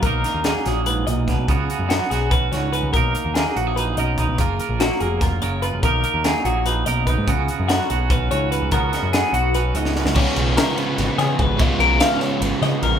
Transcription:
<<
  \new Staff \with { instrumentName = "Clean electric guitar" } { \time 7/8 \key cis \mixolydian \tempo 4 = 145 ais'4 gis'8 fis'8 b'8 dis''8 b'8 | gis'4 fis'8 gis'8 b'8 cis''8 b'8 | ais'4 gis'8 fis'8 b'8 dis''8 b'8 | gis'4 fis'8 gis'8 ais'8 cis''8 b'8 |
ais'4 gis'8 fis'8 b'8 dis''8 b'8 | gis'4 fis'8 gis'8 b'8 cis''8 b'8 | ais'4 gis'8 fis'8 b'8 dis''8 b'8 | cis''4 ais'8 b'4 gis'8 b'8 |
dis''8 ais'8 eis''8 cis''8 b'8 dis''8 ais'8 | }
  \new Staff \with { instrumentName = "Clean electric guitar" } { \time 7/8 \key cis \mixolydian << { <ais dis' ais'>8 ais'8 ais8 gis'2 | <b cis' fis'>8 fis'8 b8 fis'8 cis'8 fis'8 cis'8 | <ais dis' ais'>8 ais'8 ais8 fis'16 gis'16 dis'8 ais'8 dis'8 | <ais eis' ais'>8 ais'8 ais8 ais'8 eis'8 ais'8 eis'8 |
<ais dis' ais'>8 ais'8 ais8 gis'8 dis'8 ais'8 dis'8 | <b cis' fis'>8 fis'8 b8 fis'8 cis'8 fis'8 cis'8 | <b cis' fis'>8 fis'8 b8 fis'8 cis'8 fis'8 cis'8~ | cis'2.~ cis'8 |
r2. r8 | } \\ { r4 fis4 gis,8 ais,8 b,8 | cis4 fis4. gis,4 | r4 fis4. fis,4 | r4 fis4. cis4 |
r4 fis4. fis,4 | cis4 fis4. gis,4 | cis4 fis4. gis,4 | r2. r8 |
r2. r8 | } >> }
  \new Staff \with { instrumentName = "Overdriven electric guitar" } { \time 7/8 \key cis \mixolydian r2. r8 | r2. r8 | r2. r8 | r2. r8 |
r2. r8 | r2. r8 | r2. r8 | <cis gis b eis'>2.~ <cis gis b eis'>8 |
<cis gis b eis'>2.~ <cis gis b eis'>8 | }
  \new Staff \with { instrumentName = "Picked electric bass" } { \clef bass \time 7/8 \key cis \mixolydian b,,8 r16 dis,8 r16 ais,,4 b,,8. b,,16 | cis,8 r16 fis,8 r16 b,,4 cis,8. cis,16 | b,,8 r16 dis,8 r16 ais,,4 b,,8. b,,16 | fis,,8 r16 ais,,8 r16 eis,,4 fis,,8. fis,,16 |
b,,8 r16 dis,8 r16 ais,,4 b,,8. gis,16 | cis,8 r16 fis,8 r16 b,,4 cis,8. cis,16 | cis,8 r16 fis,8 r16 b,,4 cis,8. cis,16 | cis,16 r16 b,,8 r4 gis,,16 r16 cis16 r16 gis,,8 |
cis,16 r16 b,,8 r4 gis,,16 r16 cis16 r16 ais,,8 | }
  \new DrumStaff \with { instrumentName = "Drums" } \drummode { \time 7/8 <hh bd>8 <hh sn>8 <hh sn>8 <hh sn>8 hh8 hh8 <hh bd sn>8 | <hh bd>8 hh8 <hh sn>8 <hh sn>8 <hh bd>8 <hh sn>8 hh8 | <hh bd>8 hh8 <hh sn>8 hh8 hh8 hh8 <hh bd>8 | <hh bd>8 hh8 <hh sn>8 hh8 <hh bd sn>8 hh8 hh8 |
<hh bd>8 hh8 <hh sn>8 hh8 hh8 hh8 <hh bd>8 | <hh bd>8 hh8 <hh sn>8 hh8 <hh bd>8 hh8 hh8 | <hh bd>8 <hh sn>8 <hh sn>8 hh8 hh8 hh16 sn16 sn16 sn16 | <cymc bd>8 cymr8 <cymr sn>8 cymr8 <cymr sn>8 <cymr sn>8 <bd cymr>8 |
<bd cymr>8 cymr8 <cymr sn>8 <cymr sn>8 cymr8 <cymr sn>8 cymr8 | }
>>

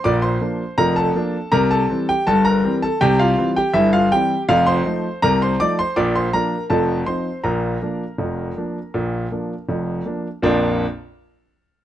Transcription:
<<
  \new Staff \with { instrumentName = "Grand piano" } { \time 2/4 \key bes \major \tempo 4 = 81 <d'' d'''>16 <c'' c'''>8. <bes' bes''>16 <a' a''>8. | <bes' bes''>16 <a' a''>8 <g' g''>16 <a' a''>16 <bes' bes''>8 <a' a''>16 | <g' g''>16 <f' f''>8 <g' g''>16 <e' e''>16 <f' f''>16 <g' g''>8 | <f' f''>16 <c'' c'''>8. <bes' bes''>16 <c'' c'''>16 <d'' d'''>16 <c'' c'''>16 |
<d'' d'''>16 <c'' c'''>16 <bes' bes''>8 <a' a''>8 <c'' c'''>8 | <bes' bes''>2~ | <bes' bes''>4 r4 | <bes,, f, f bes d' f'>8 r4. | }
  \new Staff \with { instrumentName = "Grand piano" } { \clef bass \time 2/4 \key bes \major <bes,, bes,>8 <f bes d'>8 <f,, f,>8 <f bes d'>8 | <c, c>8 <e g c'>8 <g,, g,>8 <e g c'>8 | <c, c>8 <e g c'>8 <g,, g,>8 <e g c'>8 | <f,, f,>8 <f a ees'>8 <c, c>8 <f a ees'>8 |
<bes,, bes,>8 <f bes d'>8 <f,, f,>8 <f c' ees'>8 | <bes,, bes,>8 <f bes d'>8 <f,, f,>8 <f bes d'>8 | <bes,, bes,>8 <f bes d'>8 <f,, f,>8 <f bes d'>8 | r2 | }
>>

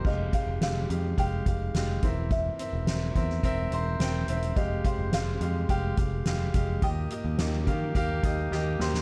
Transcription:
<<
  \new Staff \with { instrumentName = "Marimba" } { \time 4/4 \key f \minor \tempo 4 = 106 ees''8 f''8 f''4 g''4. r8 | e''2. r4 | ees''8 f''8 f''4 g''4. r8 | g''2. r4 | }
  \new Staff \with { instrumentName = "Grand piano" } { \time 4/4 \key f \minor <aes g' f''>8 <aes g' f''>8 <aes g' f''>8 <aes g' f''>8 <aes g' f''>8 <aes g' f''>8 <aes g' f''>8 <c' bes' e''>8~ | <c' bes' e''>8 <c' bes' e''>8 <c' bes' e''>8 <c' bes' e''>8 <c' bes' e''>8 <c' bes' c''>8 <c' bes' g''>8 <c' bes' e''>8 | <aes g' f''>8 <aes g' c''>8 <aes g' f''>8 <aes g' f''>8 <aes g' f''>8 <aes g'>8 <aes g' f''>8 <aes g' f''>8 | <bes g' ees''>8 <bes g' ees''>8 <bes g' ees''>8 <bes g' f''>8 <bes g' f''>8 <bes g' ees''>8 <bes g' ees''>8 <bes g' c''>8 | }
  \new Staff \with { instrumentName = "Grand piano" } { \clef bass \time 4/4 \key f \minor c4. r2 e8~ | e4 r2. | c4. r2 r8 | bes,4. r2 r8 | }
  \new Staff \with { instrumentName = "Picked electric bass" } { \clef bass \time 4/4 \key f \minor f,,8 r16 f,,16 f,,8 f,8 f,,8 f,,8 f,,8 e,,8~ | e,,8 r16 e,,16 e,,8 e,8 e,,8 e,,8 e,,8 e,,8 | f,,8 r16 f,,16 f,,8 f,8 f,,8 f,,8 f,,8 f,,8 | ees,8 r16 ees,16 ees,8 ees8 ees,8 ees,8 ees,8 ees,8 | }
  \new DrumStaff \with { instrumentName = "Drums" } \drummode { \time 4/4 <cymc bd>8 <hh bd>8 <hh sn>8 hh8 <hh bd>8 <hh bd>8 <hh sn>8 <hh bd>8 | <hh bd>8 hh8 <hh sn>8 <hh bd>16 sn16 <hh bd>8 hh8 <hh sn>8 hh16 hh16 | <hh bd>8 <hh bd>8 <hh sn>8 hh8 <hh bd>8 <hh bd>8 <hh sn>8 <hh bd>8 | <hh bd>8 hh8 <hh sn>8 <hh bd>8 <hh bd>8 <hh bd>8 sn8 sn16 sn16 | }
>>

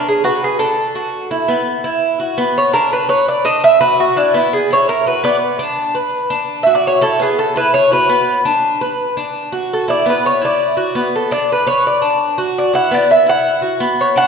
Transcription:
<<
  \new Staff \with { instrumentName = "Cuban tres" } { \time 4/4 \key d \lydian \tempo 4 = 168 gis'8 fis'8 gis'8 a'2~ a'8 | r2. cis''8 bes'8 | b'8 cis''8 d''8 dis''8 e''8 b'8 fis'8 d'8 | e'8 gis'8 cis''8 bes'8 b'8 d''8 r4 |
r2 \tuplet 3/2 { r8 e''8 d''8 } cis''8 a'8 | gis'8 a'8 b'8 cis''8 b'4. r8 | r2. a'8 d''8 | b'8 cis''8 d''4. r8 a'8 d''8 |
b'8 cis''8 d''4. r8 d''8 fis''8 | d''8 e''8 fis''4. r8 cis''8 fis''8 | }
  \new Staff \with { instrumentName = "Cuban tres" } { \time 4/4 \key d \lydian d'8 b'4 d'4 fis'4 e'8 | b4 e'4 fis'8 b4 d'8~ | d'8 b'4 d'4 fis'4 e'8 | b4 e'4 fis'8 b4 d'8~ |
d'8 b'4 d'4 fis'4 e'8 | b4 e'4 fis'8 b4 d'8~ | d'8 b'4 d'4 fis'4 e'8 | b4 e'4 fis'8 b4 d'8~ |
d'8 b'4 d'4 fis'4 e'8 | b4 e'4 fis'8 b4 d'8 | }
>>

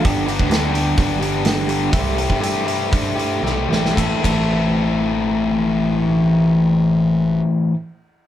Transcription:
<<
  \new Staff \with { instrumentName = "Clean electric guitar" } { \time 4/4 \key a \minor \tempo 4 = 111 <g, d g b d' g'>8 <g b d' g'>8 <g b d' g'>8 <g b d' g'>4 <g b d' g'>8 <g, d g b d' g'>4 | <c e a e' g'>8 <a e' g'>8 <e a e' g'>8 <a e' g'>4 <a e' g'>8 <c e a e' g'>4 | <a, e a c' e' b'>8 <a, e a c' e' b'>2.~ <a, e a c' e' b'>8~ | <a, e a c' e' b'>1 | }
  \new Staff \with { instrumentName = "Overdriven electric guitar" } { \time 4/4 \key a \minor <g, d g b d' g'>8 <g, d g b d' g'>8 <g, d g b d' g'>8 <g, d g b d' g'>8 <g, d g b d' g'>8 <g, d g b d' g'>8 <g, d g b d' g'>8 <g, d g b d' g'>8 | <c g c' e' g'>8 <c g c' e' g'>8 <c g c' e' g'>8 <c g c' e' g'>8 <c g c' e' g'>8 <c g c' e' g'>8 <c g c' e' g'>8 <c g c' e' g'>8 | <a, e a c' e' a'>8 <a, e a c' e' a'>2.~ <a, e a c' e' a'>8~ | <a, e a c' e' a'>1 | }
  \new Staff \with { instrumentName = "Picked electric bass" } { \clef bass \time 4/4 \key a \minor g,,8. d,4~ d,16 g,,2 | c,8. g,4~ g,16 g,4 b,,8 a,,8 | a,,16 r16 a,,2.~ a,,8~ | a,,1 | }
  \new DrumStaff \with { instrumentName = "Drums" } \drummode { \time 4/4 <hho bd>8 hho16 bd16 <hho sn>8 hho8 <hho bd>8 hho8 <hho sn>8 hho8 | <hho bd>8 hho16 bd16 hho8 hho8 <hho bd>8 hho8 sn8 sn16 sn16 | <bd cymr>8 <bd cymr>8 r4 r4 r4 | r4 r4 r4 r4 | }
>>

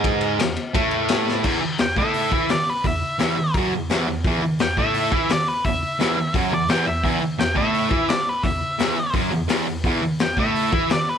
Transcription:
<<
  \new Staff \with { instrumentName = "Lead electric guitar" } { \time 4/4 \key a \major \tempo 4 = 171 r1 | r4 g''8 e''4. d''8 b'8 | e''2 r2 | r4 g''8 e''4. d''8 b'8 |
e''2 r8 d''8 g''8 e''8 | r4 g''8 e''4. d''8 b'8 | e''2 r2 | r4 g''8 e''4. d''8 b'8 | }
  \new Staff \with { instrumentName = "Distorted electric guitar" } { \clef bass \time 4/4 \key a \major <gis, gis>4 e,8 r8 <a, a>2 | <e, e>8 r8 e,8 <a, a>4 <e e'>8 r4 | e,8 r8 <e, e>8 r8 <fis, fis>8 e,8 <e, e>8 e,8 | <e, e>8 r8 e,8 <a, a>4 <e e'>8 r4 |
e,8 r8 <e, e>8 r8 <fis, fis>8 e,8 <e, e>8 e,8 | <e, e>8 r8 e,8 <a, a>4 <e e'>8 r4 | e,8 r8 <e, e>8 r8 <fis, fis>8 e,8 <e, e>8 e,8 | <e, e>8 r8 e,8 <a, a>4 <e e'>8 r4 | }
  \new DrumStaff \with { instrumentName = "Drums" } \drummode { \time 4/4 <bd cymr>8 cymr8 <cymr sn>8 cymr8 <bd cymr>8 cymr8 <cymr sn>8 sn8 | <cymc bd>4 <hho sn>8 bd8 hho8 bd8 <hho sn>4 | <hho bd>4 <hho sn>4 <hho bd>4 <hho sn>4 | <hho bd>4 <hho sn>8 bd8 hho8 bd8 <hho sn>4 |
<hho bd>4 <hho sn>4 <hho bd>4 <hho sn>4 | <hho bd>4 <hho sn>8 bd8 hho8 bd8 <hho sn>4 | <hho bd>4 <hho sn>4 <hho bd>4 <hho sn>4 | <hho bd>4 <hho sn>8 bd8 hho8 bd8 <hho sn>4 | }
>>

